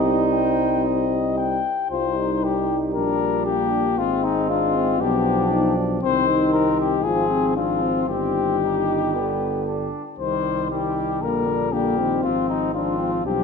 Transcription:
Already playing: C2 G3 C4 D#4 D#5
0.33 G5
0.85 D#5
1.38 G5
1.91 C2 G3 D#4 F4 C5
2.17 D#4
2.44 G4
2.94 A#1 D4 A#4
3.46 A#3 G4
3.98 G#1 G#3 C4 F4
4.24 D#4
4.50 D4 F4
4.76 C4
5.00 B1 F3 B3 D4 G4
5.51 D#4
5.77 D4
6.02 C2 D#3 C4 C5
6.28 D#4
6.53 A#4
6.80 G4
7.04 G#1 F3 C4 F4 G#4
7.30 C4
7.55 F3 C4 D4 F4
7.81 C4
8.08 G1 D#3 G3 C4 G4
8.62 D#4
9.14 D3 B3
9.66 D4
10.18 C2 D#3 G3 C5
10.70 D#3 G3 G4
11.22 A#1 D3 G3 A#3 A#4
11.47 D4
11.72 D3 G3 A#3 G4
11.98 D#3 C4
12.23 G#1 F3 C4 F4
12.50 D#4
12.74 F3 C4 D4 F4
12.99 C4
13.25 B1 F3 G3 D4 G4

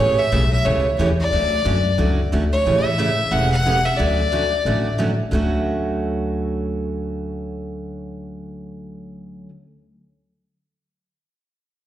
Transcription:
Already playing: C#5
0.00 A1 C#3 E3 A3 C#4 G4
0.19 E5
0.32 B1 C#3 E3 A3 C#4 G4
0.52 E5
0.65 C#2 C#3 E3 A3 C#4 G4 C#5
0.98 E2 C#3 E3 A3 C#4 G4 C#5
1.20 D5
1.32 D2 D3 F#3 A3 C#4 F#4
1.65 F#2 D3 F#3 A3 C#4 F#4
1.98 C#2 D3 F#3 A3 C#4 F#4
2.32 D2 D3 F#3 A3 C#4 F#4
2.52 C#5
2.66 A1 C#3 E3 A3 C#4 G4
2.85 E5
2.98 C#3 E3 A3 C#4 G4
3.31 E1 C#3 E3 A3 C#4 G4 F#5
3.52 F#5
3.65 C#3 E3 A3 C#4 G4
3.85 E5
3.97 D2 D3 F#3 A3 C#4 F#4 D5
4.32 D3 F#3 A3 C#4 F#4
4.65 A1 D3 F#3 A3 C#4 F#4
4.98 D3 F#3 A3 C#4 F#4
5.31 D2 D3 F#3 A3 C#4 F#4

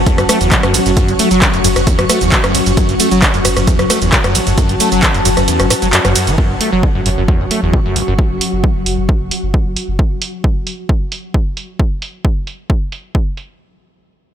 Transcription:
Already playing: F#3 C#4 F#4 F#5 C#6
0.06 E2, kick, closed hi-hat, shaker
0.18 F#1 G2, cross-stick, closed hi-hat, shaker
0.29 A3, cross-stick, open hi-hat, ride, shaker
0.41 F#1 E2, closed hi-hat, shaker
0.52 C#3, kick, clap, closed hi-hat, shaker
0.63 F#1 F#2, cross-stick, closed hi-hat, shaker
0.74 F#1, open hi-hat, ride, shaker
0.86 F#1 F#2, closed hi-hat, shaker
0.97 F#2, kick, closed hi-hat, shaker
1.08 F#1 G2, closed hi-hat, shaker
1.19 A3, open hi-hat, ride, shaker
1.31 F#1 F#3, closed hi-hat, shaker
1.42 C#3, kick, clap, closed hi-hat, shaker
1.54 F#1 F#2, closed hi-hat, shaker
1.64 F#1 F#2, open hi-hat, ride, shaker
1.76 F#1 F#2, cross-stick, closed hi-hat, shaker
1.87 E2, kick, closed hi-hat, shaker
1.99 F#1 G2, cross-stick, closed hi-hat, shaker
2.10 A3, cross-stick, open hi-hat, ride, shaker
2.21 F#1 E2, closed hi-hat, shaker
2.32 C#3, kick, clap, closed hi-hat, shaker
2.44 F#1 F#2, cross-stick, closed hi-hat, shaker
2.55 F#1, open hi-hat, ride, shaker
2.66 F#1 F#2, closed hi-hat, shaker
2.77 F#2, kick, closed hi-hat, shaker
2.89 F#1 G2, closed hi-hat, shaker
3.00 A3, open hi-hat, ride, shaker
3.11 F#1 F#3, closed hi-hat, shaker
3.22 C#3, kick, clap, closed hi-hat, shaker
3.34 F#1 F#2, closed hi-hat, shaker
3.45 F#1 F#2, cross-stick, open hi-hat, ride, shaker
3.54 F#1 F#2 A5, cross-stick, closed hi-hat, shaker
3.67 E2, kick, closed hi-hat, shaker
3.79 F#1 G2, cross-stick, closed hi-hat, shaker
3.90 A3, cross-stick, open hi-hat, ride, shaker
4.02 F#1 E2, closed hi-hat, shaker
4.13 C#3, kick, clap, closed hi-hat, shaker
4.24 F#1 F#2, cross-stick, closed hi-hat, shaker
4.35 F#1, open hi-hat, ride, shaker
4.47 F#1 F#2, closed hi-hat, shaker
4.58 F#2, kick, closed hi-hat, shaker
4.69 F#1 G2, closed hi-hat, shaker
4.80 A3, open hi-hat, ride, shaker
4.92 F#1 F#3, closed hi-hat, shaker
5.03 C#3, kick, clap, closed hi-hat, shaker
5.14 F#1 F#2, closed hi-hat, shaker
5.25 F#1 F#2, open hi-hat, ride, shaker
5.37 F#1 F#2, cross-stick, closed hi-hat, shaker
5.48 E2, closed hi-hat, shaker
5.60 F#1 G2, cross-stick, closed hi-hat, shaker
5.70 A2, cross-stick, open hi-hat, ride, shaker
5.82 F#1 F#3, closed hi-hat, shaker
5.93 F#2, clap, closed hi-hat, shaker
6.05 F#1 F#2, cross-stick, closed hi-hat, shaker
6.16 F#2, open hi-hat, ride, shaker
6.27 F#1 E3, closed hi-hat, shaker
6.38 F#2 F#3 C#4 F#4, kick
6.50 F#1 G2
6.61 A3, open hi-hat
6.72 F#1 F#3
6.83 C#3, kick
6.95 F#1 F#2
7.06 F#1 F#2, open hi-hat
7.17 F#1 F#2
7.28 E2, kick
7.40 F#1 G2
7.51 A3, open hi-hat
7.63 F#1 E2
7.73 C#3, kick
7.85 F#1 F#2
7.96 F#1, open hi-hat
8.08 F#1 F#2
8.19 kick
8.30 F#1
8.41 open hi-hat
8.53 F#1
8.64 kick
8.75 F#1
8.86 F#1, open hi-hat
8.98 F#1
9.09 kick
9.21 F#1
9.31 open hi-hat
9.43 F#1
9.54 kick
9.66 F#1
9.77 open hi-hat
9.88 F#1
9.99 kick
10.22 open hi-hat
10.44 kick
10.67 open hi-hat
10.89 kick
11.12 open hi-hat
11.34 kick
11.57 open hi-hat
11.79 kick
12.02 open hi-hat
12.25 kick
12.47 open hi-hat
12.70 kick
12.92 open hi-hat
13.15 kick
13.37 open hi-hat

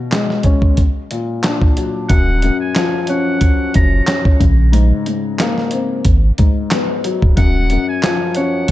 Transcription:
Already playing: B2
0.12 G#3, snare, clap, closed hi-hat
0.30 snare
0.43 C#4, kick, closed hi-hat
0.62 kick
0.77 kick, closed hi-hat
1.11 A#2, closed hi-hat
1.43 D4, snare, clap, closed hi-hat
1.62 kick
1.77 F#3, closed hi-hat
2.09 D#1 F#2 F#5, kick, closed hi-hat
2.42 F#2, closed hi-hat
2.60 G#5
2.75 F3, snare, clap, closed hi-hat
3.07 C#4 F#5, closed hi-hat
3.41 kick, closed hi-hat
3.74 F#1 F#2 A#5, kick, closed hi-hat
4.07 C#4, snare, clap, closed hi-hat
4.25 kick
4.40 A#1 C#3, kick, closed hi-hat
4.72 G#2, closed hi-hat
5.06 G#2, closed hi-hat
5.39 A#3, snare, clap, closed hi-hat
5.58 snare
5.71 C4, closed hi-hat
6.05 G#1, kick, closed hi-hat
6.38 G#2, kick, closed hi-hat
6.71 B3, snare, clap, closed hi-hat
7.04 F#3, closed hi-hat
7.22 D1, kick
7.37 D#1 F#2 F#5, kick, closed hi-hat
7.70 F#2, closed hi-hat
7.88 G#5
8.03 F3, snare, clap, closed hi-hat
8.35 C#4 F#5, closed hi-hat
8.68 closed hi-hat

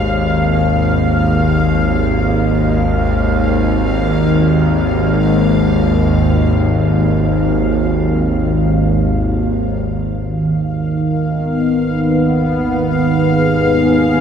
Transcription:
Already playing: G#1 D#2 F5
10.17 G#1 D#2 D#3 F5
11.22 B3
12.94 G#4

